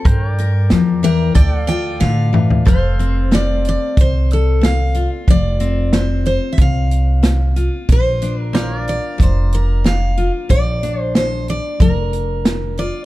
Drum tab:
HH |x-x-x-x-x-x-----|x-x-x-x-x-x-x-x-|x-x-x-x-x-x-x-x-|x-x-x-x-x-x-x-x-|
SD |----o-------o---|----o-------o---|----o-------o---|----o-------o---|
T2 |--------------o-|----------------|----------------|----------------|
FT |---------------o|----------------|----------------|----------------|
BD |o-------o-------|o-------o-------|o-------o-------|o-------o-------|

HH |x-x-x-x-x-x-x-x-|
SD |----o-------o---|
T2 |----------------|
FT |----------------|
BD |o-------o-------|